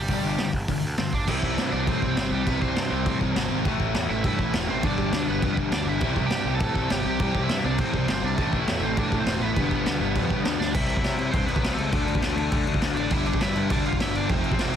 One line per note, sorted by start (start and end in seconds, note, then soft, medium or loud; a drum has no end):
0.00 0.50 G3 medium
0.00 0.49 G4 medium
0.08 0.19 G1 medium
0.08 0.38 G2 medium
0.08 0.38 D3 medium
0.08 0.39 G3 medium
0.08 kick medium
0.08 open hi-hat medium
0.24 0.35 G1 medium
0.38 0.50 G1 medium
0.38 0.53 G2 medium
0.38 0.53 D3 medium
0.38 snare loud
0.38 open hi-hat medium
0.53 0.64 G1 medium
0.53 kick medium
0.68 0.79 G1 medium
0.68 0.82 G2 medium
0.68 0.82 D3 medium
0.68 kick medium
0.68 open hi-hat medium
0.83 0.94 D2 medium
0.98 1.09 G2 medium
0.98 1.12 G2 medium
0.98 1.12 D3 medium
0.98 1.13 C4 medium
0.98 1.13 C5 medium
0.98 snare loud
0.98 open hi-hat soft
1.13 1.24 G1 medium
1.13 1.27 D4 medium
1.13 1.29 D5 medium
1.13 kick medium
1.27 1.42 C2 medium
1.27 1.71 C3 medium
1.27 1.72 G3 loud
1.27 1.71 C4 medium
1.27 1.70 E4 medium
1.27 1.72 E5 medium
1.27 kick loud
1.27 crash loud
1.27 crash medium
1.43 1.57 C2 medium
1.43 kick medium
1.57 1.72 G2 medium
1.57 snare loud
1.57 crash medium
1.72 1.87 C2 medium
1.72 2.15 C3 medium
1.72 2.16 G3 medium
1.72 2.19 C4 medium
1.72 1.86 D4 medium
1.72 1.88 D5 medium
1.87 2.02 A2 medium
1.87 2.29 C4 medium
1.87 2.29 C5 medium
1.87 kick loud
1.87 crash medium
2.02 2.16 C2 medium
2.02 kick medium
2.16 2.31 G1 medium
2.16 2.44 C3 medium
2.16 2.46 G3 medium
2.16 2.49 C4 loud
2.16 snare loud
2.16 crash medium
2.31 2.46 C2 medium
2.31 2.46 G3 medium
2.31 2.46 G4 medium
2.45 2.61 C2 loud
2.45 2.89 C3 medium
2.45 2.90 G3 loud
2.45 2.61 B3 medium
2.45 2.89 C4 loud
2.45 2.62 B4 loud
2.45 kick loud
2.45 crash medium
2.61 2.76 C2 medium
2.61 3.18 C4 medium
2.61 3.17 C5 medium
2.61 kick medium
2.76 2.90 G2 medium
2.76 snare loud
2.76 crash medium
2.90 3.05 C2 medium
2.90 3.33 C3 medium
2.90 3.35 G3 medium
2.90 3.34 C4 medium
3.06 3.20 A2 medium
3.06 kick loud
3.06 crash medium
3.21 3.35 C2 medium
3.21 kick medium
3.34 3.50 G1 loud
3.34 3.63 C3 medium
3.34 3.65 G3 medium
3.34 3.65 C4 medium
3.34 snare loud
3.34 crash medium
3.50 3.64 G#1 medium
3.64 3.79 A1 loud
3.64 4.08 A2 medium
3.64 4.09 E3 medium
3.64 4.07 A3 loud
3.64 kick loud
3.64 crash medium
3.80 3.94 A1 medium
3.80 kick medium
3.95 4.09 E2 medium
3.95 snare loud
3.95 crash medium
4.08 4.24 A1 medium
4.08 4.53 E3 medium
4.08 4.52 A3 medium
4.08 4.24 E4 medium
4.08 4.26 E5 medium
4.13 4.51 A2 medium
4.24 4.38 G2 loud
4.24 4.53 E4 medium
4.24 4.53 E5 loud
4.24 kick loud
4.24 crash medium
4.39 4.53 A1 loud
4.39 kick medium
4.52 4.68 E1 loud
4.52 4.82 A2 medium
4.52 4.83 E3 medium
4.52 4.84 A3 medium
4.52 snare loud
4.52 crash medium
4.68 4.83 A1 medium
4.68 4.83 C4 medium
4.68 4.85 C5 medium
4.82 4.98 G1 loud
4.82 5.26 G2 medium
4.82 5.27 D3 loud
4.82 5.26 G3 medium
4.82 5.25 D4 medium
4.82 5.28 D5 loud
4.82 kick loud
4.82 crash medium
4.98 5.12 G1 medium
4.98 kick medium
5.12 5.27 D2 medium
5.12 snare loud
5.12 crash medium
5.26 5.42 G1 medium
5.26 5.71 G2 medium
5.26 5.71 D3 medium
5.26 5.75 G3 medium
5.26 5.55 B3 medium
5.26 5.56 B4 medium
5.42 5.56 F2 medium
5.42 kick loud
5.42 crash medium
5.57 5.71 G1 medium
5.57 kick medium
5.71 5.86 D2 loud
5.71 6.01 G2 medium
5.71 6.01 D3 medium
5.71 5.86 D4 medium
5.71 5.88 D5 loud
5.71 snare loud
5.71 crash medium
5.76 6.03 G3 medium
5.87 6.01 G1 medium
5.87 6.22 E4 medium
5.87 6.26 E5 medium
6.01 6.16 C2 medium
6.01 6.45 C3 medium
6.01 6.46 G3 loud
6.01 kick loud
6.01 crash medium
6.05 6.45 C4 loud
6.16 6.30 C2 medium
6.16 kick medium
6.26 6.52 G4 medium
6.26 6.53 G5 loud
6.30 6.45 G2 loud
6.30 snare loud
6.30 crash medium
6.45 6.60 C2 medium
6.45 6.89 C3 medium
6.45 6.90 G3 medium
6.45 6.94 C4 medium
6.55 6.89 A4 medium
6.55 6.92 A5 medium
6.60 6.75 A2 loud
6.60 kick loud
6.60 crash medium
6.75 6.90 C2 medium
6.75 kick medium
6.90 7.04 G1 loud
6.90 7.19 C3 medium
6.90 7.20 G3 medium
6.90 7.19 G4 medium
6.90 7.19 G5 loud
6.90 snare loud
6.90 crash medium
6.94 7.23 C4 medium
7.05 7.19 C2 medium
7.20 7.34 C2 loud
7.20 7.63 C3 medium
7.20 7.64 G3 medium
7.20 7.64 C4 loud
7.20 7.41 G4 medium
7.20 7.43 G5 medium
7.20 kick loud
7.20 crash medium
7.35 7.49 C2 medium
7.35 kick medium
7.43 7.63 E4 medium
7.43 7.65 E5 loud
7.49 7.64 G2 medium
7.49 snare loud
7.49 crash medium
7.65 7.78 C2 medium
7.65 8.07 C3 medium
7.65 8.09 G3 medium
7.65 8.08 C4 loud
7.65 7.79 D4 medium
7.65 7.79 D5 medium
7.78 7.93 A2 medium
7.78 8.07 C4 medium
7.78 8.09 C5 medium
7.78 kick loud
7.78 crash medium
7.94 8.07 C2 medium
7.94 kick medium
8.08 8.22 G1 loud
8.08 8.37 C3 medium
8.08 8.38 G3 medium
8.08 8.24 C4 medium
8.08 8.39 C4 medium
8.08 8.24 C5 medium
8.08 snare loud
8.08 crash medium
8.23 8.37 C2 medium
8.23 8.58 D4 medium
8.23 8.59 D5 medium
8.37 8.52 A1 medium
8.37 8.81 A2 loud
8.37 8.82 E3 loud
8.37 8.81 A3 loud
8.37 kick loud
8.37 crash medium
8.53 8.66 A1 medium
8.53 kick medium
8.60 8.81 E4 medium
8.60 8.83 E5 medium
8.66 8.81 E2 medium
8.66 snare loud
8.66 crash medium
8.81 8.96 A1 medium
8.81 9.26 E3 medium
8.81 9.26 A3 loud
8.81 8.96 C4 medium
8.81 8.97 C5 medium
8.86 9.24 A2 medium
8.97 9.12 G2 loud
8.97 9.18 D4 medium
8.97 9.20 D5 medium
8.97 kick loud
8.97 crash medium
9.12 9.26 A1 medium
9.12 kick medium
9.20 9.41 C4 medium
9.20 9.41 C5 medium
9.25 9.41 E1 loud
9.25 9.55 A2 medium
9.25 9.56 E3 medium
9.25 9.57 A3 loud
9.25 snare loud
9.25 crash medium
9.41 9.58 A1 medium
9.41 10.56 B3 medium
9.41 10.56 B4 medium
9.55 9.70 G1 medium
9.55 9.99 G2 medium
9.55 10.01 D3 loud
9.55 kick loud
9.55 crash medium
9.60 9.99 G3 loud
9.71 9.85 G1 medium
9.71 kick medium
9.86 10.00 D2 medium
9.86 snare loud
9.86 crash medium
10.00 10.15 G1 medium
10.00 10.43 G2 medium
10.00 10.45 D3 medium
10.00 10.44 G3 loud
10.16 10.30 F2 loud
10.16 kick loud
10.16 crash medium
10.30 10.43 G1 medium
10.30 kick medium
10.44 10.58 D2 medium
10.44 10.74 G2 medium
10.44 10.75 D3 medium
10.44 snare loud
10.44 crash medium
10.48 10.75 G3 medium
10.59 10.73 D2 medium
10.59 10.74 D4 medium
10.59 10.74 D5 loud
10.59 snare medium
10.74 10.99 C2 loud
10.74 11.03 C3 medium
10.74 11.03 G3 loud
10.74 11.02 C4 loud
10.74 10.89 E4 medium
10.74 10.86 E5 loud
10.74 kick loud
10.74 crash loud
10.74 crash medium
10.88 11.31 E4 medium
10.88 11.31 E5 loud
10.88 crash medium
10.97 kick medium
11.03 11.16 C3 medium
11.03 11.32 C3 medium
11.03 11.32 G3 medium
11.03 11.33 C4 loud
11.03 snare loud
11.03 crash medium
11.18 11.31 C3 loud
11.18 crash medium
11.31 11.46 G2 medium
11.31 11.62 C3 medium
11.31 11.62 G3 medium
11.31 11.61 C4 loud
11.31 11.48 C4 medium
11.31 11.48 C5 loud
11.31 kick loud
11.31 crash medium
11.46 11.61 C2 medium
11.46 11.76 B3 medium
11.46 11.74 B4 loud
11.46 crash medium
11.56 kick medium
11.62 11.75 C2 medium
11.62 11.92 C3 medium
11.62 11.92 G3 loud
11.62 11.91 C4 loud
11.62 snare loud
11.62 crash medium
11.74 11.90 C#2 medium
11.74 12.63 A3 medium
11.74 12.61 A4 medium
11.78 crash medium
11.92 12.05 D2 medium
11.92 12.22 D3 medium
11.92 12.21 A3 loud
11.92 12.22 D4 loud
11.92 kick loud
11.92 crash medium
12.06 12.19 D2 medium
12.06 crash medium
12.15 kick medium
12.21 12.34 D2 medium
12.21 12.50 D3 medium
12.21 12.50 A3 loud
12.21 12.51 D4 loud
12.21 snare loud
12.21 crash medium
12.36 12.49 D2 medium
12.36 crash medium
12.51 12.81 D3 medium
12.51 12.64 D3 loud
12.51 12.80 A3 medium
12.51 12.79 D4 loud
12.51 kick loud
12.51 crash medium
12.66 12.79 D2 medium
12.66 crash medium
12.74 kick medium
12.81 12.94 D2 loud
12.81 13.10 D3 medium
12.81 13.10 A3 loud
12.81 13.10 D4 loud
12.81 snare loud
12.81 crash medium
12.95 13.08 A1 medium
12.95 13.10 D4 medium
12.95 13.12 D5 medium
12.95 crash medium
13.10 13.36 G1 medium
13.10 13.41 G2 loud
13.10 13.41 D3 loud
13.10 13.40 G3 loud
13.10 13.25 E4 medium
13.10 13.27 E5 loud
13.10 kick loud
13.10 crash medium
13.26 13.40 D4 medium
13.26 13.41 D5 medium
13.26 crash medium
13.34 kick medium
13.41 13.53 G2 medium
13.41 13.69 G2 medium
13.41 13.69 D3 loud
13.41 13.70 G3 loud
13.41 13.69 E4 medium
13.41 13.71 E5 loud
13.41 snare loud
13.41 crash medium
13.56 13.68 G2 medium
13.56 crash medium
13.70 13.83 D2 medium
13.70 14.00 G2 medium
13.70 13.99 D3 loud
13.70 13.99 G3 loud
13.70 13.85 D4 medium
13.70 13.86 D5 medium
13.70 kick loud
13.70 crash medium
13.85 13.98 G1 medium
13.85 14.00 F4 medium
13.85 14.01 F5 loud
13.85 crash medium
13.93 kick medium
14.00 14.13 G1 medium
14.00 14.28 G2 medium
14.00 14.29 D3 loud
14.00 14.29 G3 loud
14.00 14.14 E4 medium
14.00 14.15 E5 loud
14.00 snare loud
14.00 crash medium
14.15 14.27 G1 medium
14.15 14.29 D4 medium
14.15 14.31 D5 medium
14.15 crash medium
14.29 14.42 F1 loud
14.29 14.59 F2 medium
14.29 14.58 C3 medium
14.29 14.58 F3 loud
14.29 14.76 C4 medium
14.29 14.76 C5 medium
14.29 kick loud
14.29 crash medium
14.44 14.57 F1 medium
14.44 crash medium
14.52 kick loud
14.59 14.72 F1 medium
14.59 14.76 F2 medium
14.59 14.76 C3 loud
14.59 14.76 F3 loud
14.59 snare loud
14.59 crash medium